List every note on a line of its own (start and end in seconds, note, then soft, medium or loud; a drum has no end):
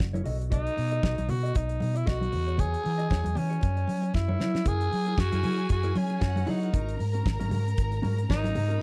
0.00 0.20 F#1 medium
0.00 0.26 F#4 medium
0.00 muted clean electric guitar stroke soft
0.00 kick loud
0.00 snare loud
0.00 muted conga soft
0.13 0.24 E4 soft
0.13 0.25 A#4 medium
0.13 0.25 C#5 medium
0.13 closed hi-hat soft
0.13 high conga medium
0.24 0.66 B1 medium
0.24 0.43 F#4 medium
0.24 0.40 A4 medium
0.24 0.38 D#5 medium
0.24 open hi-hat medium
0.24 muted conga soft
0.24 low conga medium
0.40 muted clean electric guitar stroke soft
0.40 closed hi-hat soft
0.50 1.31 D#4 loud
0.50 0.75 F#4 medium
0.50 0.75 A4 medium
0.50 0.75 D#5 medium
0.50 kick loud
0.50 closed hi-hat medium
0.50 muted conga soft
0.50 low conga medium
0.67 closed hi-hat soft
0.76 0.98 B2 medium
0.76 muted clean electric guitar stroke soft
0.76 open hi-hat medium
0.76 muted conga soft
0.91 1.02 F#4 medium
0.91 1.02 A4 medium
0.91 1.03 D#5 medium
0.91 closed hi-hat medium
1.03 1.14 B1 loud
1.03 1.21 F#4 medium
1.03 1.18 A4 medium
1.03 1.17 D#5 medium
1.03 kick loud
1.03 snare medium
1.03 muted conga soft
1.18 1.27 B1 medium
1.18 muted clean electric guitar stroke soft
1.18 closed hi-hat medium
1.18 high conga medium
1.28 1.50 B2 medium
1.28 1.58 F#4 medium
1.28 muted clean electric guitar stroke soft
1.28 open hi-hat medium
1.28 muted conga soft
1.28 low conga medium
1.43 1.54 F#4 soft
1.43 1.54 A4 medium
1.43 1.54 D#5 medium
1.43 closed hi-hat soft
1.54 1.75 B1 loud
1.54 1.98 D#4 medium
1.54 muted clean electric guitar stroke soft
1.54 kick loud
1.54 closed hi-hat medium
1.54 muted conga soft
1.68 muted clean electric guitar stroke soft
1.68 closed hi-hat soft
1.80 2.01 B2 loud
1.80 open hi-hat medium
1.80 muted conga soft
1.80 high conga medium
1.94 2.09 E4 medium
1.94 muted clean electric guitar stroke soft
1.94 closed hi-hat soft
2.06 2.27 B1 loud
2.06 2.25 F#4 medium
2.06 2.61 F#4 loud
2.06 2.21 A4 medium
2.06 2.20 D#5 loud
2.06 kick loud
2.06 snare medium
2.06 muted conga soft
2.21 muted clean electric guitar stroke soft
2.21 closed hi-hat soft
2.21 high conga medium
2.32 2.73 E2 medium
2.32 muted clean electric guitar stroke soft
2.32 open hi-hat medium
2.32 muted conga soft
2.32 low conga medium
2.47 2.56 F#4 soft
2.47 2.57 G#4 soft
2.47 2.57 C#5 medium
2.47 closed hi-hat soft
2.57 2.82 F#4 medium
2.57 2.83 G#4 medium
2.57 3.39 G#4 loud
2.57 2.83 C#5 medium
2.57 kick loud
2.57 closed hi-hat medium
2.57 muted conga soft
2.57 low conga medium
2.74 closed hi-hat soft
2.84 3.05 E3 medium
2.84 muted clean electric guitar stroke soft
2.84 open hi-hat medium
2.84 muted conga soft
2.98 3.09 F#4 medium
2.98 3.09 G#4 medium
2.98 3.10 D#5 medium
2.98 closed hi-hat soft
3.10 3.22 E2 medium
3.10 3.29 F#4 medium
3.10 3.23 G#4 medium
3.10 3.23 C#5 medium
3.10 kick loud
3.10 snare loud
3.10 muted conga soft
3.24 3.34 E2 medium
3.24 muted clean electric guitar stroke soft
3.24 closed hi-hat medium
3.24 high conga medium
3.35 3.57 E3 medium
3.35 4.15 C#4 medium
3.35 muted clean electric guitar stroke soft
3.35 open hi-hat medium
3.35 muted conga soft
3.35 low conga medium
3.50 3.61 F#4 soft
3.50 3.61 G#4 medium
3.50 3.61 C#5 medium
3.50 closed hi-hat soft
3.61 3.83 F#2 loud
3.61 muted clean electric guitar stroke soft
3.61 kick loud
3.61 closed hi-hat medium
3.61 muted conga soft
3.77 muted clean electric guitar stroke soft
3.77 closed hi-hat soft
3.88 4.09 F#3 loud
3.88 open hi-hat medium
3.88 high conga medium
4.02 muted clean electric guitar stroke soft
4.02 closed hi-hat soft
4.14 4.34 F#2 medium
4.14 4.69 E4 medium
4.14 muted clean electric guitar stroke soft
4.14 kick medium
4.14 snare medium
4.14 muted conga soft
4.28 4.38 E4 soft
4.28 4.39 A#4 soft
4.28 4.40 C#5 medium
4.28 high conga loud
4.39 4.61 F#3 medium
4.39 4.58 E4 medium
4.39 4.53 A#4 medium
4.39 4.53 C#5 medium
4.39 snare medium
4.39 muted conga soft
4.39 low conga medium
4.54 muted clean electric guitar stroke soft
4.54 snare medium
4.65 4.86 F#2 medium
4.65 4.90 E4 medium
4.65 4.90 G#4 medium
4.65 6.19 G#4 medium
4.65 5.21 G#4 loud
4.65 4.90 A#4 medium
4.65 6.18 G#5 medium
4.65 kick loud
4.65 closed hi-hat medium
4.65 muted conga soft
4.65 low conga medium
4.81 closed hi-hat soft
4.91 5.13 F#3 medium
4.91 muted clean electric guitar stroke soft
4.91 open hi-hat medium
4.91 muted conga soft
5.06 5.16 E4 soft
5.06 5.16 G#4 medium
5.06 5.17 A#4 medium
5.06 closed hi-hat soft
5.17 5.29 F#2 medium
5.17 5.71 F#4 loud
5.17 muted clean electric guitar stroke medium
5.17 kick loud
5.17 snare loud
5.17 muted conga soft
5.32 5.42 F#2 loud
5.32 5.42 E4 medium
5.32 5.42 G#4 medium
5.32 5.43 A#4 medium
5.32 closed hi-hat medium
5.32 high conga medium
5.43 5.64 F#3 medium
5.43 5.59 E4 medium
5.43 5.56 A#4 medium
5.43 open hi-hat medium
5.43 high conga medium
5.43 low conga medium
5.57 muted clean electric guitar stroke soft
5.57 closed hi-hat soft
5.69 5.90 F#2 loud
5.69 5.99 F#4 medium
5.69 muted clean electric guitar stroke soft
5.69 kick loud
5.69 closed hi-hat medium
5.83 5.94 E4 medium
5.83 5.94 G#4 medium
5.83 5.95 A#4 medium
5.83 closed hi-hat soft
5.95 6.16 F#3 medium
5.95 6.51 C#4 medium
5.95 open hi-hat medium
5.95 muted conga soft
5.95 high conga medium
6.10 muted clean electric guitar stroke medium
6.10 closed hi-hat soft
6.21 6.42 F#2 loud
6.21 6.73 F#4 medium
6.21 6.73 F#5 medium
6.21 muted clean electric guitar stroke soft
6.21 kick loud
6.21 snare loud
6.21 muted conga soft
6.36 muted clean electric guitar stroke soft
6.36 closed hi-hat soft
6.36 high conga medium
6.46 6.68 F#3 medium
6.46 7.01 D#4 medium
6.46 6.62 E4 medium
6.46 6.62 G#4 medium
6.46 6.61 C#5 medium
6.46 open hi-hat medium
6.46 muted conga soft
6.46 low conga medium
6.62 6.73 E4 soft
6.62 6.74 G#4 soft
6.62 6.73 A#4 medium
6.62 closed hi-hat soft
6.73 6.94 G#1 medium
6.73 6.97 C#4 medium
6.73 6.98 F#4 medium
6.73 6.98 A#4 medium
6.73 8.78 A#4 medium
6.73 8.78 A#5 medium
6.73 kick loud
6.73 closed hi-hat medium
6.73 muted conga soft
6.73 low conga medium
6.89 closed hi-hat soft
6.99 7.20 G#2 medium
6.99 muted clean electric guitar stroke soft
6.99 open hi-hat medium
6.99 muted conga soft
7.13 7.24 C#4 soft
7.13 7.24 F#4 medium
7.13 7.25 A#4 medium
7.13 closed hi-hat medium
7.25 7.37 G#1 loud
7.25 muted clean electric guitar stroke soft
7.25 kick loud
7.25 snare loud
7.39 7.50 G#1 loud
7.39 7.49 C#4 medium
7.39 7.50 F#4 medium
7.39 7.50 A#4 medium
7.39 closed hi-hat medium
7.39 high conga medium
7.50 7.72 G#2 medium
7.50 7.66 C#4 medium
7.50 7.65 F#4 medium
7.50 7.64 A#4 medium
7.50 open hi-hat medium
7.50 muted conga soft
7.50 high conga medium
7.50 low conga medium
7.65 muted clean electric guitar stroke soft
7.65 closed hi-hat soft
7.77 7.98 G#1 loud
7.77 kick loud
7.77 closed hi-hat medium
7.91 muted clean electric guitar stroke soft
7.91 closed hi-hat soft
8.02 8.24 G#2 medium
8.02 8.21 C#4 loud
8.02 8.17 F#4 medium
8.02 8.16 A#4 loud
8.02 open hi-hat medium
8.02 muted conga soft
8.02 high conga medium
8.17 muted clean electric guitar stroke medium
8.17 closed hi-hat soft
8.29 8.50 G#1 loud
8.29 8.48 C#4 medium
8.29 8.82 D#4 medium
8.29 8.43 F#4 medium
8.29 8.43 C#5 medium
8.29 kick loud
8.29 snare loud
8.29 muted conga soft
8.43 muted clean electric guitar stroke soft
8.43 snare soft
8.43 closed hi-hat soft
8.43 high conga medium
8.55 8.76 G#2 medium
8.55 muted clean electric guitar stroke soft
8.55 open hi-hat medium
8.55 muted conga soft
8.55 low conga medium
8.68 8.79 C#4 medium
8.68 8.80 F#4 medium
8.68 8.81 A#4 medium
8.68 closed hi-hat soft